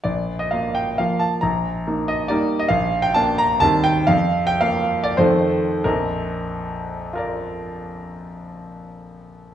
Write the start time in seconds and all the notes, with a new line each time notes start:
0.04 A#1 D5
0.39 D#5
0.51 A#3 F4 F5
0.75 G5
0.98 F3 A#3 F4 F5
1.19 A5
1.41 A#1 A#5
1.87 A#3 D#4
2.08 D#5
2.28 G3 A#3 D#4 D5
2.59 D#5
2.68 A#1 F5
3.02 G5
3.14 A#3 D4 A5
3.38 A#5
3.60 D#2 D#3 G3 C4 A5
3.84 G5
4.07 F2 F5
4.47 G5
4.61 A#3 F4 F5
5.04 D5
5.17 F2 D#3 A3 F4 C5
5.84 A#1 F2 A#4
7.13 F4 A#4
7.18 D5